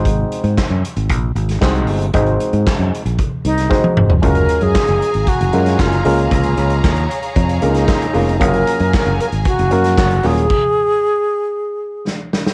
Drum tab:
CC |----------------|----------------|----------------|----------------|
HH |x-xx--xxx-xx-xox|xxxx-xxxx-xx----|xxxx-xxxxxxx-xox|xxxx-xxxxxxx-xox|
CP |----x-------x---|----x-----------|----x-------x---|----x-------x---|
SD |----o------oo---|----o------oo---|----o------oo---|----o------oo---|
T1 |----------------|-------------o--|----------------|----------------|
T2 |----------------|--------------o-|----------------|----------------|
FT |----------------|---------------o|----------------|----------------|
BD |o---o---o---o---|o---o---o---o---|o---o---o---o---|o---o---o---o---|

CC |----------------|x---------------|
HH |xxxx-xxxxxxx-xox|----------------|
CP |----x-------x---|----------------|
SD |----o------oo---|------------o-oo|
T1 |----------------|----------------|
T2 |----------------|----------------|
FT |----------------|----------------|
BD |o---o---o---o---|o---------------|